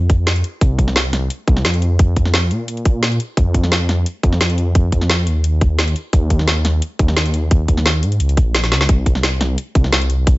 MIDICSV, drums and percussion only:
0, 0, Header, 1, 2, 480
1, 0, Start_track
1, 0, Tempo, 344828
1, 856, Time_signature, 4, 2, 24, 8
1, 14449, End_track
2, 0, Start_track
2, 0, Title_t, "Drums"
2, 134, Note_on_c, 9, 36, 108
2, 134, Note_on_c, 9, 42, 64
2, 273, Note_off_c, 9, 36, 0
2, 273, Note_off_c, 9, 42, 0
2, 374, Note_on_c, 9, 38, 119
2, 374, Note_on_c, 9, 42, 90
2, 501, Note_off_c, 9, 42, 0
2, 501, Note_on_c, 9, 42, 37
2, 513, Note_off_c, 9, 38, 0
2, 614, Note_off_c, 9, 42, 0
2, 614, Note_on_c, 9, 42, 65
2, 753, Note_off_c, 9, 42, 0
2, 853, Note_on_c, 9, 36, 118
2, 854, Note_on_c, 9, 42, 84
2, 993, Note_off_c, 9, 36, 0
2, 993, Note_off_c, 9, 42, 0
2, 1093, Note_on_c, 9, 36, 63
2, 1095, Note_on_c, 9, 42, 65
2, 1221, Note_on_c, 9, 40, 36
2, 1232, Note_off_c, 9, 36, 0
2, 1234, Note_off_c, 9, 42, 0
2, 1333, Note_on_c, 9, 38, 118
2, 1333, Note_on_c, 9, 42, 90
2, 1360, Note_off_c, 9, 40, 0
2, 1473, Note_off_c, 9, 38, 0
2, 1473, Note_off_c, 9, 42, 0
2, 1573, Note_on_c, 9, 40, 56
2, 1573, Note_on_c, 9, 42, 64
2, 1713, Note_off_c, 9, 40, 0
2, 1713, Note_off_c, 9, 42, 0
2, 1814, Note_on_c, 9, 42, 88
2, 1953, Note_off_c, 9, 42, 0
2, 2054, Note_on_c, 9, 36, 108
2, 2054, Note_on_c, 9, 42, 61
2, 2179, Note_on_c, 9, 40, 35
2, 2193, Note_off_c, 9, 36, 0
2, 2193, Note_off_c, 9, 42, 0
2, 2294, Note_on_c, 9, 38, 117
2, 2294, Note_on_c, 9, 42, 87
2, 2318, Note_off_c, 9, 40, 0
2, 2419, Note_off_c, 9, 42, 0
2, 2419, Note_on_c, 9, 42, 36
2, 2433, Note_off_c, 9, 38, 0
2, 2533, Note_off_c, 9, 42, 0
2, 2533, Note_on_c, 9, 42, 61
2, 2672, Note_off_c, 9, 42, 0
2, 2773, Note_on_c, 9, 42, 83
2, 2774, Note_on_c, 9, 36, 116
2, 2912, Note_off_c, 9, 42, 0
2, 2913, Note_off_c, 9, 36, 0
2, 3013, Note_on_c, 9, 42, 60
2, 3014, Note_on_c, 9, 36, 62
2, 3139, Note_on_c, 9, 40, 35
2, 3152, Note_off_c, 9, 42, 0
2, 3153, Note_off_c, 9, 36, 0
2, 3252, Note_on_c, 9, 38, 121
2, 3252, Note_on_c, 9, 42, 85
2, 3278, Note_off_c, 9, 40, 0
2, 3391, Note_off_c, 9, 38, 0
2, 3391, Note_off_c, 9, 42, 0
2, 3493, Note_on_c, 9, 42, 63
2, 3632, Note_off_c, 9, 42, 0
2, 3732, Note_on_c, 9, 42, 83
2, 3858, Note_off_c, 9, 42, 0
2, 3858, Note_on_c, 9, 42, 35
2, 3973, Note_off_c, 9, 42, 0
2, 3973, Note_on_c, 9, 42, 61
2, 3974, Note_on_c, 9, 36, 107
2, 4112, Note_off_c, 9, 42, 0
2, 4113, Note_off_c, 9, 36, 0
2, 4213, Note_on_c, 9, 38, 114
2, 4213, Note_on_c, 9, 42, 86
2, 4339, Note_off_c, 9, 42, 0
2, 4339, Note_on_c, 9, 42, 35
2, 4352, Note_off_c, 9, 38, 0
2, 4454, Note_off_c, 9, 42, 0
2, 4454, Note_on_c, 9, 42, 59
2, 4593, Note_off_c, 9, 42, 0
2, 4693, Note_on_c, 9, 36, 112
2, 4695, Note_on_c, 9, 42, 84
2, 4833, Note_off_c, 9, 36, 0
2, 4834, Note_off_c, 9, 42, 0
2, 4933, Note_on_c, 9, 36, 60
2, 4935, Note_on_c, 9, 42, 61
2, 5060, Note_on_c, 9, 40, 34
2, 5073, Note_off_c, 9, 36, 0
2, 5074, Note_off_c, 9, 42, 0
2, 5175, Note_on_c, 9, 38, 114
2, 5175, Note_on_c, 9, 42, 86
2, 5199, Note_off_c, 9, 40, 0
2, 5314, Note_off_c, 9, 38, 0
2, 5314, Note_off_c, 9, 42, 0
2, 5415, Note_on_c, 9, 40, 53
2, 5415, Note_on_c, 9, 42, 62
2, 5554, Note_off_c, 9, 40, 0
2, 5554, Note_off_c, 9, 42, 0
2, 5655, Note_on_c, 9, 42, 85
2, 5794, Note_off_c, 9, 42, 0
2, 5894, Note_on_c, 9, 36, 103
2, 5895, Note_on_c, 9, 42, 59
2, 6020, Note_on_c, 9, 40, 32
2, 6033, Note_off_c, 9, 36, 0
2, 6034, Note_off_c, 9, 42, 0
2, 6135, Note_on_c, 9, 38, 114
2, 6135, Note_on_c, 9, 42, 86
2, 6159, Note_off_c, 9, 40, 0
2, 6260, Note_off_c, 9, 42, 0
2, 6260, Note_on_c, 9, 42, 36
2, 6274, Note_off_c, 9, 38, 0
2, 6374, Note_off_c, 9, 42, 0
2, 6374, Note_on_c, 9, 42, 62
2, 6513, Note_off_c, 9, 42, 0
2, 6614, Note_on_c, 9, 36, 107
2, 6614, Note_on_c, 9, 42, 87
2, 6753, Note_off_c, 9, 36, 0
2, 6753, Note_off_c, 9, 42, 0
2, 6854, Note_on_c, 9, 36, 58
2, 6854, Note_on_c, 9, 42, 64
2, 6980, Note_on_c, 9, 40, 33
2, 6993, Note_off_c, 9, 36, 0
2, 6993, Note_off_c, 9, 42, 0
2, 7093, Note_on_c, 9, 38, 108
2, 7093, Note_on_c, 9, 42, 90
2, 7119, Note_off_c, 9, 40, 0
2, 7232, Note_off_c, 9, 38, 0
2, 7232, Note_off_c, 9, 42, 0
2, 7333, Note_on_c, 9, 42, 65
2, 7472, Note_off_c, 9, 42, 0
2, 7573, Note_on_c, 9, 42, 89
2, 7712, Note_off_c, 9, 42, 0
2, 7814, Note_on_c, 9, 36, 100
2, 7814, Note_on_c, 9, 42, 63
2, 7953, Note_off_c, 9, 36, 0
2, 7953, Note_off_c, 9, 42, 0
2, 8054, Note_on_c, 9, 38, 111
2, 8054, Note_on_c, 9, 42, 90
2, 8179, Note_off_c, 9, 42, 0
2, 8179, Note_on_c, 9, 42, 36
2, 8193, Note_off_c, 9, 38, 0
2, 8294, Note_off_c, 9, 42, 0
2, 8294, Note_on_c, 9, 42, 62
2, 8433, Note_off_c, 9, 42, 0
2, 8534, Note_on_c, 9, 36, 104
2, 8534, Note_on_c, 9, 42, 91
2, 8673, Note_off_c, 9, 36, 0
2, 8673, Note_off_c, 9, 42, 0
2, 8774, Note_on_c, 9, 36, 56
2, 8774, Note_on_c, 9, 42, 67
2, 8900, Note_on_c, 9, 40, 35
2, 8913, Note_off_c, 9, 36, 0
2, 8913, Note_off_c, 9, 42, 0
2, 9014, Note_on_c, 9, 38, 110
2, 9014, Note_on_c, 9, 42, 93
2, 9039, Note_off_c, 9, 40, 0
2, 9153, Note_off_c, 9, 38, 0
2, 9153, Note_off_c, 9, 42, 0
2, 9254, Note_on_c, 9, 40, 54
2, 9254, Note_on_c, 9, 42, 68
2, 9393, Note_off_c, 9, 40, 0
2, 9393, Note_off_c, 9, 42, 0
2, 9494, Note_on_c, 9, 42, 92
2, 9633, Note_off_c, 9, 42, 0
2, 9735, Note_on_c, 9, 36, 98
2, 9735, Note_on_c, 9, 42, 67
2, 9860, Note_on_c, 9, 40, 33
2, 9874, Note_off_c, 9, 36, 0
2, 9874, Note_off_c, 9, 42, 0
2, 9974, Note_on_c, 9, 38, 109
2, 9974, Note_on_c, 9, 42, 91
2, 9999, Note_off_c, 9, 40, 0
2, 10101, Note_off_c, 9, 42, 0
2, 10101, Note_on_c, 9, 42, 38
2, 10113, Note_off_c, 9, 38, 0
2, 10214, Note_off_c, 9, 42, 0
2, 10214, Note_on_c, 9, 42, 67
2, 10354, Note_off_c, 9, 42, 0
2, 10455, Note_on_c, 9, 36, 110
2, 10455, Note_on_c, 9, 42, 97
2, 10594, Note_off_c, 9, 36, 0
2, 10594, Note_off_c, 9, 42, 0
2, 10696, Note_on_c, 9, 36, 58
2, 10696, Note_on_c, 9, 42, 66
2, 10822, Note_on_c, 9, 40, 36
2, 10835, Note_off_c, 9, 36, 0
2, 10835, Note_off_c, 9, 42, 0
2, 10936, Note_on_c, 9, 38, 109
2, 10936, Note_on_c, 9, 42, 96
2, 10961, Note_off_c, 9, 40, 0
2, 11075, Note_off_c, 9, 38, 0
2, 11075, Note_off_c, 9, 42, 0
2, 11176, Note_on_c, 9, 42, 70
2, 11302, Note_off_c, 9, 42, 0
2, 11302, Note_on_c, 9, 42, 38
2, 11415, Note_off_c, 9, 42, 0
2, 11415, Note_on_c, 9, 42, 91
2, 11541, Note_off_c, 9, 42, 0
2, 11541, Note_on_c, 9, 42, 37
2, 11655, Note_off_c, 9, 42, 0
2, 11655, Note_on_c, 9, 36, 99
2, 11655, Note_on_c, 9, 42, 67
2, 11794, Note_off_c, 9, 36, 0
2, 11794, Note_off_c, 9, 42, 0
2, 11895, Note_on_c, 9, 38, 112
2, 11895, Note_on_c, 9, 42, 93
2, 12021, Note_off_c, 9, 38, 0
2, 12021, Note_off_c, 9, 42, 0
2, 12021, Note_on_c, 9, 38, 53
2, 12021, Note_on_c, 9, 42, 40
2, 12135, Note_off_c, 9, 38, 0
2, 12135, Note_off_c, 9, 42, 0
2, 12135, Note_on_c, 9, 38, 77
2, 12135, Note_on_c, 9, 42, 68
2, 12260, Note_off_c, 9, 38, 0
2, 12260, Note_on_c, 9, 38, 78
2, 12274, Note_off_c, 9, 42, 0
2, 12374, Note_on_c, 9, 42, 95
2, 12375, Note_on_c, 9, 36, 115
2, 12399, Note_off_c, 9, 38, 0
2, 12514, Note_off_c, 9, 36, 0
2, 12514, Note_off_c, 9, 42, 0
2, 12614, Note_on_c, 9, 42, 69
2, 12615, Note_on_c, 9, 36, 60
2, 12740, Note_on_c, 9, 40, 38
2, 12753, Note_off_c, 9, 42, 0
2, 12754, Note_off_c, 9, 36, 0
2, 12854, Note_on_c, 9, 38, 118
2, 12854, Note_on_c, 9, 42, 96
2, 12879, Note_off_c, 9, 40, 0
2, 12993, Note_off_c, 9, 38, 0
2, 12993, Note_off_c, 9, 42, 0
2, 13094, Note_on_c, 9, 40, 58
2, 13094, Note_on_c, 9, 42, 69
2, 13234, Note_off_c, 9, 40, 0
2, 13234, Note_off_c, 9, 42, 0
2, 13335, Note_on_c, 9, 42, 92
2, 13474, Note_off_c, 9, 42, 0
2, 13575, Note_on_c, 9, 36, 102
2, 13575, Note_on_c, 9, 42, 66
2, 13701, Note_on_c, 9, 40, 35
2, 13714, Note_off_c, 9, 36, 0
2, 13715, Note_off_c, 9, 42, 0
2, 13815, Note_on_c, 9, 38, 116
2, 13815, Note_on_c, 9, 42, 94
2, 13840, Note_off_c, 9, 40, 0
2, 13942, Note_off_c, 9, 42, 0
2, 13942, Note_on_c, 9, 42, 39
2, 13955, Note_off_c, 9, 38, 0
2, 14056, Note_off_c, 9, 42, 0
2, 14056, Note_on_c, 9, 42, 67
2, 14195, Note_off_c, 9, 42, 0
2, 14295, Note_on_c, 9, 36, 119
2, 14295, Note_on_c, 9, 42, 92
2, 14434, Note_off_c, 9, 36, 0
2, 14435, Note_off_c, 9, 42, 0
2, 14449, End_track
0, 0, End_of_file